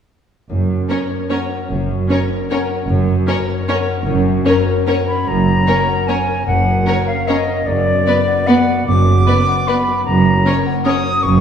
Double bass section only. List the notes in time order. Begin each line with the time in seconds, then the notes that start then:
0.50 F#1
1.71 F#1
2.88 F#1
4.06 F#1
5.26 F#1
6.47 F#1
7.67 F#1
8.87 F#1
10.07 F#1
11.24 F#1